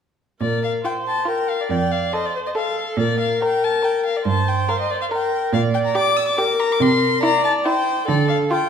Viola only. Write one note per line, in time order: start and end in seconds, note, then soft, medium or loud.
0.41 0.81 A#4 soft
0.84 1.29 C5 soft
1.27 1.70 A#4 soft
1.70 2.15 D5 soft
2.13 2.57 C5 soft
2.55 3.00 A4 soft
2.98 4.25 A#4 soft
4.26 5.09 C5 soft
5.11 5.55 A#4 soft
5.53 6.39 D5 medium
6.37 7.21 A#4 medium
7.22 7.66 D5 medium
7.65 8.07 C5 medium
8.07 8.52 A4 medium
8.50 8.69 F4 soft